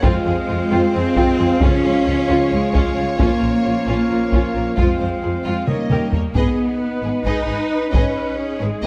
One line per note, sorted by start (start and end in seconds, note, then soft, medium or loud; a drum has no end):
0.03 0.11 F2 medium
0.03 3.02 F3 medium
0.03 0.90 G#3 medium
0.03 3.02 G#3 medium
0.03 1.58 C4 medium
0.03 0.25 C4 medium
0.03 1.62 C4 medium
0.03 0.24 F4 medium
0.03 3.15 F4 medium
0.03 5.68 F4 medium
0.03 3.20 G#4 medium
0.03 1.62 C5 medium
0.03 5.68 F5 medium
0.03 taiko medium
0.25 0.33 F2 medium
0.25 0.34 F4 soft
0.25 0.36 G#4 soft
0.48 0.56 F2 soft
0.48 0.57 F4 medium
0.70 0.79 F2 medium
0.70 0.92 C4 medium
0.70 0.92 F4 medium
0.93 1.02 F2 soft
0.93 1.61 C4 medium
0.93 1.02 F4 medium
0.93 1.02 G#4 medium
1.16 1.24 F2 medium
1.16 1.37 C4 medium
1.16 1.37 F4 medium
1.16 taiko medium
1.38 1.46 F2 soft
1.38 1.47 F4 medium
1.38 1.47 G#4 medium
1.61 1.69 C#2 medium
1.61 4.77 C#4 medium
1.61 2.52 C#4 medium
1.61 4.78 C#4 medium
1.61 1.83 C#4 medium
1.61 1.83 F4 medium
1.61 4.78 C#5 medium
1.61 taiko medium
1.84 1.92 C#2 medium
1.84 1.92 F4 soft
1.84 1.92 G#4 soft
2.06 2.14 C#2 soft
2.06 2.14 F4 soft
2.06 2.15 F4 soft
2.28 2.36 C#2 medium
2.28 2.50 C#4 medium
2.28 2.50 F4 medium
2.51 2.60 C#2 soft
2.51 3.19 G#3 medium
2.51 2.60 F4 soft
2.51 2.59 G#4 soft
2.73 2.82 C#2 medium
2.73 2.95 C#4 medium
2.73 2.95 F4 medium
2.73 taiko medium
2.96 3.04 C#2 soft
2.96 3.05 F4 medium
2.96 3.04 G#4 soft
3.18 3.28 A#1 medium
3.18 5.64 F3 medium
3.18 4.74 A#3 medium
3.18 4.78 A#3 medium
3.18 3.40 C#4 medium
3.18 5.64 F4 soft
3.18 3.40 F4 medium
3.18 4.78 A#4 medium
3.18 taiko medium
3.40 3.50 A#1 soft
3.40 3.50 F4 soft
3.40 3.48 A#4 soft
3.64 3.73 A#1 soft
3.64 3.72 F4 soft
3.64 3.73 F4 soft
3.87 3.95 A#1 medium
3.87 4.08 C#4 soft
3.87 4.08 F4 medium
4.10 4.18 A#1 soft
4.10 4.18 F4 soft
4.10 4.18 A#4 soft
4.32 4.41 A#1 medium
4.32 4.54 C#4 soft
4.32 4.53 F4 medium
4.32 taiko medium
4.54 4.63 A#1 soft
4.54 4.62 F4 soft
4.54 4.62 A#4 soft
4.77 4.86 F2 medium
4.77 5.44 G#3 medium
4.77 5.68 C4 soft
4.77 5.66 C4 soft
4.77 4.98 F4 medium
4.77 4.99 F4 soft
4.77 5.68 C5 soft
4.77 5.66 C5 soft
4.77 taiko medium
5.00 5.08 F2 soft
5.00 5.09 F4 soft
5.00 5.08 C5 soft
5.23 5.31 F2 soft
5.23 5.32 F4 soft
5.23 5.31 G#4 soft
5.45 5.54 F2 soft
5.45 5.66 G#3 medium
5.45 5.66 F4 medium
5.45 5.67 F4 soft
5.67 5.76 D#2 soft
5.67 6.13 D#3 soft
5.67 6.13 G3 soft
5.67 6.35 A#3 medium
5.67 6.13 A#3 soft
5.67 6.13 C#4 soft
5.67 6.12 D#4 soft
5.67 6.13 A#4 soft
5.67 5.76 A#4 soft
5.67 6.13 A#4 soft
5.67 5.76 C#5 soft
5.67 6.13 C#5 soft
5.67 6.16 D#5 soft
5.67 6.13 D#5 medium
5.67 taiko mid medium
5.90 5.98 D#2 soft
5.90 6.11 G4 soft
5.90 6.11 A#4 soft
5.90 taiko mid medium
6.12 6.20 D#2 soft
6.12 6.21 A#4 soft
6.12 6.21 C#5 soft
6.12 taiko low medium
6.34 6.42 G#1 soft
6.34 7.26 B3 medium
6.34 8.87 D#4 soft
6.34 6.56 G#4 medium
6.34 6.78 G#4 soft
6.34 6.56 B4 soft
6.34 8.87 D#5 soft
6.34 6.57 D#5 soft
6.34 taiko medium
6.81 8.39 B4 medium
7.03 7.11 G#1 soft
7.03 7.12 G#4 soft
7.03 7.11 B4 soft
7.25 7.33 G#1 soft
7.25 7.92 D#4 medium
7.25 7.46 G#4 soft
7.25 7.47 B4 soft
7.25 7.47 D#5 soft
7.25 taiko medium
7.47 7.56 G#1 soft
7.47 7.56 G#4 soft
7.47 7.55 B4 soft
7.92 8.01 G#1 soft
7.92 8.60 C#4 medium
7.92 8.15 G#4 soft
7.92 8.15 B4 soft
7.92 8.14 D#5 soft
7.92 taiko medium
8.39 8.87 G#4 medium
8.60 8.69 G#1 soft
8.60 8.84 G#3 medium
8.60 8.70 G#4 soft
8.60 8.68 B4 soft
8.83 8.87 G#1 medium
8.83 8.87 A#3 medium
8.83 8.87 B4 medium
8.83 8.87 D#5 medium
8.83 taiko medium